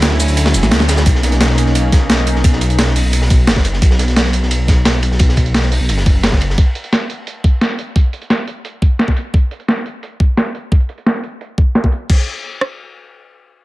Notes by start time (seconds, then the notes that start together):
Already playing: D2 F#3 C#4 E4
0.02 snare, closed hi-hat, ride
0.12 snare
0.20 closed hi-hat, open hi-hat, shaker
0.28 D2, closed hi-hat, shaker
0.37 closed hi-hat, ride
0.45 snare
0.54 D1, closed hi-hat, shaker
0.63 A1, snare, shaker
0.71 D2, snare, closed hi-hat, ride
0.80 snare
0.89 snare, closed hi-hat, ride, shaker
0.97 snare, ride, shaker
1.06 B1 A#3 C#4 D#4, kick, closed hi-hat, ride
1.15 snare
1.23 snare, closed hi-hat, ride
1.32 snare, closed hi-hat
1.41 snare, closed hi-hat, ride
1.50 snare
1.58 closed hi-hat, ride
1.66 B1, snare
1.75 closed hi-hat, ride
1.92 kick, snare, closed hi-hat, ride
2.10 B1, snare, closed hi-hat, ride
2.27 closed hi-hat, ride
2.35 B1, snare
2.44 kick, closed hi-hat, ride
2.53 snare
2.61 closed hi-hat, ride
2.70 closed hi-hat
2.79 snare, closed hi-hat, ride
2.87 snare
2.96 closed hi-hat, open hi-hat
3.05 B1
3.13 closed hi-hat, ride
3.22 snare
3.30 B1, kick, closed hi-hat, ride
3.47 F#1, snare, closed hi-hat, ride
3.56 kick, snare
3.65 closed hi-hat, ride
3.73 snare
3.82 B1, kick, closed hi-hat, ride
3.91 snare
3.99 snare, closed hi-hat, ride
4.08 snare, closed hi-hat
4.16 snare, closed hi-hat, ride
4.26 snare
4.33 closed hi-hat, ride
4.42 B1, snare
4.51 closed hi-hat, ride
4.68 kick, snare, closed hi-hat, ride
4.85 B1, snare, closed hi-hat, ride
5.03 closed hi-hat, ride
5.11 B1, snare
5.19 kick, closed hi-hat, ride
5.29 snare
5.37 kick, closed hi-hat, ride
5.46 closed hi-hat
5.54 snare, closed hi-hat, ride
5.63 snare
5.72 closed hi-hat, open hi-hat
5.80 B1
5.89 F#1, closed hi-hat, ride
5.98 snare
6.06 kick, closed hi-hat, ride
6.23 snare, closed hi-hat, ride
6.32 kick, snare
6.41 F#1, closed hi-hat, ride
6.50 snare
6.58 kick, closed hi-hat
6.75 closed hi-hat
6.84 closed hi-hat
6.93 snare, closed hi-hat
7.10 closed hi-hat
7.27 closed hi-hat
7.44 kick, closed hi-hat
7.61 snare, closed hi-hat
7.79 closed hi-hat
7.96 kick, closed hi-hat
8.13 closed hi-hat
8.22 closed hi-hat
8.30 snare, closed hi-hat
8.48 closed hi-hat
8.65 closed hi-hat
8.82 kick, closed hi-hat
8.99 snare, closed hi-hat
9.08 kick, snare
9.17 closed hi-hat
9.34 kick, closed hi-hat
9.51 closed hi-hat
9.60 closed hi-hat
9.68 snare, closed hi-hat
9.86 closed hi-hat
10.03 closed hi-hat
10.20 kick, closed hi-hat
10.37 snare, closed hi-hat
10.55 closed hi-hat
10.72 kick, closed hi-hat
10.80 closed hi-hat
10.89 closed hi-hat
10.98 closed hi-hat
11.06 snare, closed hi-hat
11.24 closed hi-hat
11.41 closed hi-hat
11.58 kick, closed hi-hat
11.75 snare, closed hi-hat
11.84 kick, snare
11.92 closed hi-hat
12.10 kick, crash
12.61 cross-stick